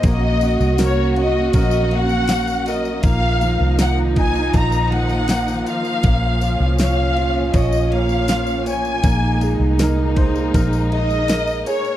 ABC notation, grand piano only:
X:1
M:4/4
L:1/8
Q:1/4=80
K:Bbm
V:1 name="Grand piano"
B, G B G B B, G B | B, F, B, E B, F, B, F | B, F d F d B, F d | B, A B c B e B A |]